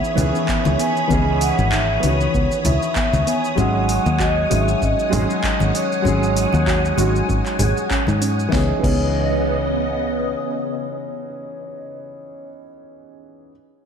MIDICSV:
0, 0, Header, 1, 7, 480
1, 0, Start_track
1, 0, Key_signature, 4, "minor"
1, 0, Tempo, 618557
1, 856, Time_signature, 4, 2, 24, 8
1, 10751, End_track
2, 0, Start_track
2, 0, Title_t, "String machine"
2, 0, Program_c, 0, 50
2, 0, Note_on_c, 0, 73, 77
2, 0, Note_on_c, 0, 83, 68
2, 0, Note_on_c, 0, 87, 82
2, 2746, Note_off_c, 0, 83, 0
2, 2776, Note_on_c, 0, 80, 66
2, 2778, Note_on_c, 0, 78, 75
2, 6584, Note_off_c, 0, 87, 0
2, 6585, Note_off_c, 0, 80, 0
2, 6586, Note_off_c, 0, 78, 0
2, 6588, Note_off_c, 0, 73, 0
2, 6623, Note_on_c, 0, 49, 75
2, 6627, Note_on_c, 0, 59, 74
2, 6628, Note_on_c, 0, 75, 70
2, 9130, Note_off_c, 0, 49, 0
2, 9131, Note_off_c, 0, 59, 0
2, 9132, Note_off_c, 0, 75, 0
2, 10751, End_track
3, 0, Start_track
3, 0, Title_t, "Vibraphone"
3, 0, Program_c, 1, 11
3, 0, Note_on_c, 1, 76, 103
3, 619, Note_on_c, 1, 80, 114
3, 638, Note_off_c, 1, 76, 0
3, 1096, Note_on_c, 1, 78, 106
3, 1112, Note_off_c, 1, 80, 0
3, 1334, Note_on_c, 1, 76, 107
3, 1343, Note_off_c, 1, 78, 0
3, 1575, Note_on_c, 1, 73, 99
3, 1582, Note_off_c, 1, 76, 0
3, 2059, Note_on_c, 1, 76, 92
3, 2070, Note_off_c, 1, 73, 0
3, 2290, Note_off_c, 1, 76, 0
3, 2299, Note_on_c, 1, 76, 100
3, 2541, Note_on_c, 1, 80, 103
3, 2545, Note_off_c, 1, 76, 0
3, 2648, Note_off_c, 1, 80, 0
3, 2777, Note_on_c, 1, 78, 105
3, 3263, Note_on_c, 1, 75, 100
3, 3271, Note_off_c, 1, 78, 0
3, 3504, Note_on_c, 1, 76, 93
3, 3507, Note_off_c, 1, 75, 0
3, 3739, Note_on_c, 1, 75, 103
3, 3747, Note_off_c, 1, 76, 0
3, 4470, Note_on_c, 1, 73, 84
3, 4479, Note_off_c, 1, 75, 0
3, 6352, Note_off_c, 1, 73, 0
3, 6616, Note_on_c, 1, 73, 94
3, 6759, Note_off_c, 1, 73, 0
3, 6865, Note_on_c, 1, 73, 86
3, 9673, Note_off_c, 1, 73, 0
3, 10751, End_track
4, 0, Start_track
4, 0, Title_t, "Grand piano"
4, 0, Program_c, 2, 0
4, 0, Control_c, 2, 64, 127
4, 0, Note_on_c, 2, 52, 76
4, 0, Note_on_c, 2, 59, 61
4, 0, Note_on_c, 2, 61, 67
4, 0, Note_on_c, 2, 63, 61
4, 0, Note_on_c, 2, 68, 78
4, 106, Note_off_c, 2, 52, 0
4, 109, Note_off_c, 2, 59, 0
4, 112, Note_off_c, 2, 61, 0
4, 114, Note_off_c, 2, 63, 0
4, 117, Note_off_c, 2, 68, 0
4, 119, Note_on_c, 2, 52, 100
4, 129, Note_on_c, 2, 59, 86
4, 140, Note_on_c, 2, 61, 91
4, 149, Note_on_c, 2, 51, 89
4, 159, Note_on_c, 2, 68, 107
4, 821, Note_off_c, 2, 52, 0
4, 826, Note_off_c, 2, 59, 0
4, 832, Note_off_c, 2, 61, 0
4, 835, Note_on_c, 2, 52, 100
4, 837, Note_off_c, 2, 51, 0
4, 842, Note_off_c, 2, 68, 0
4, 845, Note_on_c, 2, 59, 91
4, 854, Note_on_c, 2, 61, 88
4, 865, Note_on_c, 2, 63, 90
4, 874, Note_on_c, 2, 68, 101
4, 1540, Note_off_c, 2, 52, 0
4, 1545, Note_off_c, 2, 59, 0
4, 1549, Note_off_c, 2, 61, 0
4, 1552, Note_on_c, 2, 52, 80
4, 1555, Note_off_c, 2, 63, 0
4, 1559, Note_off_c, 2, 68, 0
4, 1564, Note_on_c, 2, 59, 69
4, 1573, Note_on_c, 2, 61, 73
4, 1582, Note_on_c, 2, 51, 73
4, 1592, Note_on_c, 2, 66, 82
4, 2738, Note_off_c, 2, 52, 0
4, 2744, Note_off_c, 2, 59, 0
4, 2749, Note_off_c, 2, 61, 0
4, 2753, Note_off_c, 2, 51, 0
4, 2758, Note_off_c, 2, 66, 0
4, 2758, Note_on_c, 2, 54, 92
4, 2768, Note_on_c, 2, 56, 86
4, 2779, Note_on_c, 2, 61, 85
4, 2784, Control_c, 2, 64, 0
4, 2789, Note_on_c, 2, 63, 82
4, 2798, Note_on_c, 2, 68, 100
4, 2904, Control_c, 2, 64, 127
4, 3461, Note_off_c, 2, 54, 0
4, 3466, Note_off_c, 2, 56, 0
4, 3472, Note_off_c, 2, 61, 0
4, 3477, Note_off_c, 2, 63, 0
4, 3481, Note_off_c, 2, 68, 0
4, 3491, Note_on_c, 2, 54, 70
4, 3493, Note_on_c, 2, 56, 68
4, 3499, Note_on_c, 2, 61, 66
4, 3503, Note_on_c, 2, 51, 62
4, 3509, Note_on_c, 2, 68, 78
4, 3940, Note_off_c, 2, 54, 0
4, 3949, Note_off_c, 2, 56, 0
4, 3951, Note_off_c, 2, 61, 0
4, 3952, Note_on_c, 2, 54, 98
4, 3954, Note_off_c, 2, 51, 0
4, 3957, Note_off_c, 2, 68, 0
4, 3962, Note_on_c, 2, 56, 95
4, 3974, Note_on_c, 2, 61, 91
4, 3980, Note_on_c, 2, 63, 94
4, 3992, Note_on_c, 2, 68, 108
4, 4658, Note_off_c, 2, 54, 0
4, 4663, Note_off_c, 2, 56, 0
4, 4669, Note_off_c, 2, 61, 0
4, 4672, Note_off_c, 2, 63, 0
4, 4672, Note_on_c, 2, 54, 101
4, 4678, Note_off_c, 2, 68, 0
4, 4682, Note_on_c, 2, 56, 88
4, 4693, Note_on_c, 2, 61, 89
4, 4703, Note_on_c, 2, 63, 87
4, 4714, Note_on_c, 2, 68, 110
4, 5378, Note_off_c, 2, 54, 0
4, 5383, Note_off_c, 2, 56, 0
4, 5389, Note_off_c, 2, 61, 0
4, 5394, Note_off_c, 2, 63, 0
4, 5396, Note_on_c, 2, 54, 82
4, 5399, Note_off_c, 2, 68, 0
4, 5406, Note_on_c, 2, 56, 76
4, 5416, Note_on_c, 2, 61, 77
4, 5426, Note_on_c, 2, 63, 69
4, 5435, Note_on_c, 2, 66, 86
4, 6580, Note_off_c, 2, 54, 0
4, 6585, Note_off_c, 2, 56, 0
4, 6585, Note_on_c, 2, 52, 89
4, 6590, Note_off_c, 2, 61, 0
4, 6595, Note_off_c, 2, 63, 0
4, 6600, Note_off_c, 2, 66, 0
4, 6600, Note_on_c, 2, 59, 79
4, 6614, Note_on_c, 2, 61, 74
4, 6624, Control_c, 2, 64, 0
4, 6628, Note_on_c, 2, 63, 81
4, 6645, Note_on_c, 2, 68, 99
4, 6742, Note_off_c, 2, 52, 0
4, 6751, Note_off_c, 2, 59, 0
4, 6758, Note_off_c, 2, 61, 0
4, 6765, Note_off_c, 2, 63, 0
4, 6774, Control_c, 2, 64, 127
4, 6775, Note_off_c, 2, 68, 0
4, 6823, Note_on_c, 2, 52, 84
4, 6841, Note_on_c, 2, 59, 77
4, 6855, Note_on_c, 2, 61, 79
4, 6869, Note_on_c, 2, 63, 75
4, 6884, Note_on_c, 2, 68, 94
4, 9652, Note_off_c, 2, 52, 0
4, 9661, Note_off_c, 2, 59, 0
4, 9668, Note_off_c, 2, 61, 0
4, 9676, Note_off_c, 2, 63, 0
4, 9683, Note_off_c, 2, 68, 0
4, 10487, Control_c, 2, 64, 0
4, 10751, End_track
5, 0, Start_track
5, 0, Title_t, "Synth pluck"
5, 0, Program_c, 3, 84
5, 135, Note_on_c, 3, 64, 77
5, 276, Note_off_c, 3, 64, 0
5, 375, Note_on_c, 3, 59, 76
5, 594, Note_off_c, 3, 59, 0
5, 614, Note_on_c, 3, 59, 74
5, 834, Note_off_c, 3, 59, 0
5, 855, Note_on_c, 3, 59, 82
5, 1074, Note_off_c, 3, 59, 0
5, 1337, Note_on_c, 3, 63, 73
5, 1478, Note_off_c, 3, 63, 0
5, 1579, Note_on_c, 3, 63, 75
5, 1796, Note_off_c, 3, 63, 0
5, 1818, Note_on_c, 3, 59, 75
5, 1958, Note_off_c, 3, 59, 0
5, 2058, Note_on_c, 3, 64, 73
5, 2198, Note_off_c, 3, 64, 0
5, 2296, Note_on_c, 3, 59, 78
5, 2514, Note_off_c, 3, 59, 0
5, 2538, Note_on_c, 3, 59, 82
5, 2755, Note_off_c, 3, 59, 0
5, 2775, Note_on_c, 3, 61, 81
5, 2994, Note_off_c, 3, 61, 0
5, 3255, Note_on_c, 3, 66, 69
5, 3396, Note_off_c, 3, 66, 0
5, 3496, Note_on_c, 3, 66, 75
5, 3715, Note_off_c, 3, 66, 0
5, 3736, Note_on_c, 3, 61, 81
5, 3877, Note_off_c, 3, 61, 0
5, 3976, Note_on_c, 3, 68, 76
5, 4117, Note_off_c, 3, 68, 0
5, 4215, Note_on_c, 3, 61, 75
5, 4434, Note_off_c, 3, 61, 0
5, 4457, Note_on_c, 3, 61, 81
5, 4675, Note_off_c, 3, 61, 0
5, 4694, Note_on_c, 3, 61, 81
5, 4914, Note_off_c, 3, 61, 0
5, 5175, Note_on_c, 3, 66, 75
5, 5316, Note_off_c, 3, 66, 0
5, 5413, Note_on_c, 3, 66, 78
5, 5633, Note_off_c, 3, 66, 0
5, 5654, Note_on_c, 3, 61, 81
5, 5796, Note_off_c, 3, 61, 0
5, 5893, Note_on_c, 3, 68, 82
5, 6035, Note_off_c, 3, 68, 0
5, 6133, Note_on_c, 3, 61, 74
5, 6353, Note_off_c, 3, 61, 0
5, 6374, Note_on_c, 3, 61, 79
5, 6593, Note_off_c, 3, 61, 0
5, 6611, Note_on_c, 3, 59, 92
5, 6756, Note_off_c, 3, 59, 0
5, 6853, Note_on_c, 3, 59, 86
5, 6997, Note_off_c, 3, 59, 0
5, 10751, End_track
6, 0, Start_track
6, 0, Title_t, "Fingered electric bass"
6, 0, Program_c, 4, 33
6, 137, Note_on_c, 4, 37, 95
6, 229, Note_off_c, 4, 37, 0
6, 512, Note_on_c, 4, 37, 107
6, 586, Note_off_c, 4, 37, 0
6, 858, Note_on_c, 4, 37, 96
6, 1166, Note_off_c, 4, 37, 0
6, 1230, Note_on_c, 4, 32, 99
6, 1526, Note_off_c, 4, 32, 0
6, 1579, Note_on_c, 4, 37, 90
6, 1753, Note_off_c, 4, 37, 0
6, 1818, Note_on_c, 4, 37, 83
6, 1910, Note_off_c, 4, 37, 0
6, 2060, Note_on_c, 4, 37, 105
6, 2151, Note_off_c, 4, 37, 0
6, 2431, Note_on_c, 4, 37, 104
6, 2505, Note_off_c, 4, 37, 0
6, 2776, Note_on_c, 4, 32, 101
6, 3085, Note_off_c, 4, 32, 0
6, 3152, Note_on_c, 4, 39, 101
6, 3447, Note_off_c, 4, 39, 0
6, 3502, Note_on_c, 4, 32, 98
6, 3675, Note_off_c, 4, 32, 0
6, 3738, Note_on_c, 4, 32, 90
6, 3830, Note_off_c, 4, 32, 0
6, 3981, Note_on_c, 4, 32, 108
6, 4071, Note_off_c, 4, 32, 0
6, 4354, Note_on_c, 4, 32, 104
6, 4427, Note_off_c, 4, 32, 0
6, 4697, Note_on_c, 4, 32, 92
6, 5005, Note_off_c, 4, 32, 0
6, 5073, Note_on_c, 4, 39, 94
6, 5367, Note_off_c, 4, 39, 0
6, 5419, Note_on_c, 4, 32, 90
6, 5593, Note_off_c, 4, 32, 0
6, 5657, Note_on_c, 4, 32, 91
6, 5749, Note_off_c, 4, 32, 0
6, 5896, Note_on_c, 4, 32, 100
6, 5989, Note_off_c, 4, 32, 0
6, 6270, Note_on_c, 4, 44, 86
6, 6566, Note_off_c, 4, 44, 0
6, 6615, Note_on_c, 4, 37, 88
6, 6759, Note_off_c, 4, 37, 0
6, 6855, Note_on_c, 4, 37, 99
6, 8025, Note_off_c, 4, 37, 0
6, 10751, End_track
7, 0, Start_track
7, 0, Title_t, "Drums"
7, 34, Note_on_c, 9, 82, 32
7, 111, Note_off_c, 9, 82, 0
7, 133, Note_on_c, 9, 63, 66
7, 138, Note_on_c, 9, 64, 101
7, 139, Note_on_c, 9, 46, 93
7, 141, Note_on_c, 9, 82, 87
7, 211, Note_off_c, 9, 63, 0
7, 215, Note_off_c, 9, 64, 0
7, 216, Note_off_c, 9, 46, 0
7, 219, Note_off_c, 9, 82, 0
7, 274, Note_on_c, 9, 82, 31
7, 352, Note_off_c, 9, 82, 0
7, 376, Note_on_c, 9, 39, 107
7, 377, Note_on_c, 9, 36, 106
7, 379, Note_on_c, 9, 82, 48
7, 454, Note_off_c, 9, 36, 0
7, 454, Note_off_c, 9, 39, 0
7, 457, Note_off_c, 9, 82, 0
7, 505, Note_on_c, 9, 62, 61
7, 510, Note_on_c, 9, 63, 99
7, 510, Note_on_c, 9, 82, 28
7, 583, Note_off_c, 9, 62, 0
7, 588, Note_off_c, 9, 63, 0
7, 588, Note_off_c, 9, 82, 0
7, 617, Note_on_c, 9, 46, 82
7, 619, Note_on_c, 9, 82, 76
7, 694, Note_off_c, 9, 46, 0
7, 697, Note_off_c, 9, 82, 0
7, 752, Note_on_c, 9, 82, 30
7, 829, Note_off_c, 9, 82, 0
7, 856, Note_on_c, 9, 36, 101
7, 856, Note_on_c, 9, 63, 92
7, 860, Note_on_c, 9, 82, 45
7, 934, Note_off_c, 9, 36, 0
7, 934, Note_off_c, 9, 63, 0
7, 938, Note_off_c, 9, 82, 0
7, 1095, Note_on_c, 9, 46, 96
7, 1098, Note_on_c, 9, 82, 84
7, 1173, Note_off_c, 9, 46, 0
7, 1176, Note_off_c, 9, 82, 0
7, 1231, Note_on_c, 9, 82, 28
7, 1233, Note_on_c, 9, 63, 68
7, 1309, Note_off_c, 9, 82, 0
7, 1310, Note_off_c, 9, 63, 0
7, 1335, Note_on_c, 9, 39, 104
7, 1336, Note_on_c, 9, 36, 100
7, 1338, Note_on_c, 9, 82, 45
7, 1413, Note_off_c, 9, 39, 0
7, 1414, Note_off_c, 9, 36, 0
7, 1416, Note_off_c, 9, 82, 0
7, 1575, Note_on_c, 9, 46, 81
7, 1578, Note_on_c, 9, 63, 94
7, 1578, Note_on_c, 9, 82, 73
7, 1653, Note_off_c, 9, 46, 0
7, 1656, Note_off_c, 9, 63, 0
7, 1656, Note_off_c, 9, 82, 0
7, 1712, Note_on_c, 9, 82, 34
7, 1790, Note_off_c, 9, 82, 0
7, 1816, Note_on_c, 9, 36, 102
7, 1820, Note_on_c, 9, 82, 43
7, 1894, Note_off_c, 9, 36, 0
7, 1898, Note_off_c, 9, 82, 0
7, 1952, Note_on_c, 9, 82, 32
7, 2030, Note_off_c, 9, 82, 0
7, 2054, Note_on_c, 9, 63, 71
7, 2055, Note_on_c, 9, 46, 97
7, 2055, Note_on_c, 9, 62, 38
7, 2057, Note_on_c, 9, 64, 91
7, 2058, Note_on_c, 9, 82, 80
7, 2132, Note_off_c, 9, 62, 0
7, 2132, Note_off_c, 9, 63, 0
7, 2133, Note_off_c, 9, 46, 0
7, 2134, Note_off_c, 9, 64, 0
7, 2135, Note_off_c, 9, 82, 0
7, 2191, Note_on_c, 9, 82, 34
7, 2269, Note_off_c, 9, 82, 0
7, 2294, Note_on_c, 9, 39, 106
7, 2296, Note_on_c, 9, 36, 110
7, 2297, Note_on_c, 9, 82, 42
7, 2372, Note_off_c, 9, 39, 0
7, 2373, Note_off_c, 9, 36, 0
7, 2374, Note_off_c, 9, 82, 0
7, 2433, Note_on_c, 9, 63, 86
7, 2433, Note_on_c, 9, 82, 29
7, 2510, Note_off_c, 9, 63, 0
7, 2511, Note_off_c, 9, 82, 0
7, 2539, Note_on_c, 9, 46, 84
7, 2542, Note_on_c, 9, 82, 72
7, 2617, Note_off_c, 9, 46, 0
7, 2619, Note_off_c, 9, 82, 0
7, 2673, Note_on_c, 9, 82, 29
7, 2751, Note_off_c, 9, 82, 0
7, 2775, Note_on_c, 9, 36, 103
7, 2775, Note_on_c, 9, 63, 82
7, 2779, Note_on_c, 9, 82, 42
7, 2852, Note_off_c, 9, 63, 0
7, 2853, Note_off_c, 9, 36, 0
7, 2856, Note_off_c, 9, 82, 0
7, 3018, Note_on_c, 9, 46, 100
7, 3021, Note_on_c, 9, 82, 76
7, 3096, Note_off_c, 9, 46, 0
7, 3098, Note_off_c, 9, 82, 0
7, 3151, Note_on_c, 9, 82, 30
7, 3152, Note_on_c, 9, 63, 65
7, 3229, Note_off_c, 9, 63, 0
7, 3229, Note_off_c, 9, 82, 0
7, 3256, Note_on_c, 9, 36, 108
7, 3258, Note_on_c, 9, 39, 100
7, 3260, Note_on_c, 9, 82, 43
7, 3333, Note_off_c, 9, 36, 0
7, 3335, Note_off_c, 9, 39, 0
7, 3338, Note_off_c, 9, 82, 0
7, 3499, Note_on_c, 9, 46, 89
7, 3500, Note_on_c, 9, 63, 89
7, 3501, Note_on_c, 9, 82, 73
7, 3576, Note_off_c, 9, 46, 0
7, 3578, Note_off_c, 9, 63, 0
7, 3579, Note_off_c, 9, 82, 0
7, 3633, Note_on_c, 9, 82, 33
7, 3711, Note_off_c, 9, 82, 0
7, 3736, Note_on_c, 9, 36, 102
7, 3742, Note_on_c, 9, 82, 39
7, 3813, Note_off_c, 9, 36, 0
7, 3820, Note_off_c, 9, 82, 0
7, 3875, Note_on_c, 9, 82, 32
7, 3953, Note_off_c, 9, 82, 0
7, 3975, Note_on_c, 9, 63, 59
7, 3979, Note_on_c, 9, 46, 101
7, 3981, Note_on_c, 9, 64, 92
7, 3982, Note_on_c, 9, 82, 76
7, 4052, Note_off_c, 9, 63, 0
7, 4057, Note_off_c, 9, 46, 0
7, 4059, Note_off_c, 9, 64, 0
7, 4059, Note_off_c, 9, 82, 0
7, 4115, Note_on_c, 9, 82, 31
7, 4192, Note_off_c, 9, 82, 0
7, 4216, Note_on_c, 9, 36, 109
7, 4221, Note_on_c, 9, 39, 105
7, 4223, Note_on_c, 9, 82, 43
7, 4294, Note_off_c, 9, 36, 0
7, 4298, Note_off_c, 9, 39, 0
7, 4301, Note_off_c, 9, 82, 0
7, 4346, Note_on_c, 9, 62, 63
7, 4350, Note_on_c, 9, 63, 83
7, 4355, Note_on_c, 9, 82, 29
7, 4424, Note_off_c, 9, 62, 0
7, 4428, Note_off_c, 9, 63, 0
7, 4432, Note_off_c, 9, 82, 0
7, 4461, Note_on_c, 9, 46, 92
7, 4464, Note_on_c, 9, 82, 70
7, 4539, Note_off_c, 9, 46, 0
7, 4541, Note_off_c, 9, 82, 0
7, 4596, Note_on_c, 9, 82, 30
7, 4673, Note_off_c, 9, 82, 0
7, 4695, Note_on_c, 9, 63, 81
7, 4696, Note_on_c, 9, 36, 100
7, 4706, Note_on_c, 9, 82, 44
7, 4773, Note_off_c, 9, 36, 0
7, 4773, Note_off_c, 9, 63, 0
7, 4783, Note_off_c, 9, 82, 0
7, 4836, Note_on_c, 9, 82, 27
7, 4914, Note_off_c, 9, 82, 0
7, 4938, Note_on_c, 9, 62, 38
7, 4940, Note_on_c, 9, 46, 98
7, 4943, Note_on_c, 9, 82, 78
7, 5015, Note_off_c, 9, 62, 0
7, 5018, Note_off_c, 9, 46, 0
7, 5020, Note_off_c, 9, 82, 0
7, 5064, Note_on_c, 9, 63, 62
7, 5075, Note_on_c, 9, 82, 31
7, 5142, Note_off_c, 9, 63, 0
7, 5153, Note_off_c, 9, 82, 0
7, 5176, Note_on_c, 9, 36, 107
7, 5181, Note_on_c, 9, 39, 104
7, 5183, Note_on_c, 9, 82, 44
7, 5253, Note_off_c, 9, 36, 0
7, 5258, Note_off_c, 9, 39, 0
7, 5261, Note_off_c, 9, 82, 0
7, 5316, Note_on_c, 9, 82, 31
7, 5394, Note_off_c, 9, 82, 0
7, 5414, Note_on_c, 9, 63, 93
7, 5420, Note_on_c, 9, 46, 88
7, 5422, Note_on_c, 9, 82, 73
7, 5491, Note_off_c, 9, 63, 0
7, 5497, Note_off_c, 9, 46, 0
7, 5500, Note_off_c, 9, 82, 0
7, 5554, Note_on_c, 9, 82, 34
7, 5632, Note_off_c, 9, 82, 0
7, 5655, Note_on_c, 9, 36, 103
7, 5661, Note_on_c, 9, 82, 44
7, 5732, Note_off_c, 9, 36, 0
7, 5738, Note_off_c, 9, 82, 0
7, 5788, Note_on_c, 9, 39, 34
7, 5791, Note_on_c, 9, 82, 30
7, 5866, Note_off_c, 9, 39, 0
7, 5869, Note_off_c, 9, 82, 0
7, 5890, Note_on_c, 9, 64, 101
7, 5893, Note_on_c, 9, 46, 104
7, 5895, Note_on_c, 9, 62, 41
7, 5895, Note_on_c, 9, 63, 62
7, 5896, Note_on_c, 9, 82, 85
7, 5968, Note_off_c, 9, 64, 0
7, 5971, Note_off_c, 9, 46, 0
7, 5972, Note_off_c, 9, 63, 0
7, 5973, Note_off_c, 9, 62, 0
7, 5973, Note_off_c, 9, 82, 0
7, 6032, Note_on_c, 9, 82, 33
7, 6109, Note_off_c, 9, 82, 0
7, 6134, Note_on_c, 9, 36, 111
7, 6137, Note_on_c, 9, 39, 110
7, 6140, Note_on_c, 9, 82, 45
7, 6212, Note_off_c, 9, 36, 0
7, 6215, Note_off_c, 9, 39, 0
7, 6218, Note_off_c, 9, 82, 0
7, 6261, Note_on_c, 9, 63, 81
7, 6272, Note_on_c, 9, 82, 29
7, 6339, Note_off_c, 9, 63, 0
7, 6350, Note_off_c, 9, 82, 0
7, 6377, Note_on_c, 9, 46, 95
7, 6379, Note_on_c, 9, 82, 75
7, 6454, Note_off_c, 9, 46, 0
7, 6457, Note_off_c, 9, 82, 0
7, 6514, Note_on_c, 9, 82, 30
7, 6592, Note_off_c, 9, 82, 0
7, 6614, Note_on_c, 9, 36, 117
7, 6619, Note_on_c, 9, 38, 82
7, 6692, Note_off_c, 9, 36, 0
7, 6696, Note_off_c, 9, 38, 0
7, 6855, Note_on_c, 9, 36, 115
7, 6861, Note_on_c, 9, 49, 95
7, 6933, Note_off_c, 9, 36, 0
7, 6938, Note_off_c, 9, 49, 0
7, 10751, End_track
0, 0, End_of_file